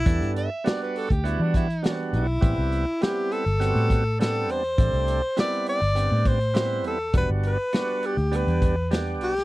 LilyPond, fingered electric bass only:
\new Staff \with { instrumentName = "Fingered electric bass" } { \clef bass \time 4/4 \key e \minor \tempo 4 = 102 e,16 g,8 r4 d,8 e4~ e16 b,,8 | a,,16 c,8 r4 g,,8 a,4~ a,16 e,8 | a,,16 c,8 r4 g,,8 a,4~ a,16 e,8 | e,,16 g,,8 r4 d,8 e,4~ e,16 b,,8 | }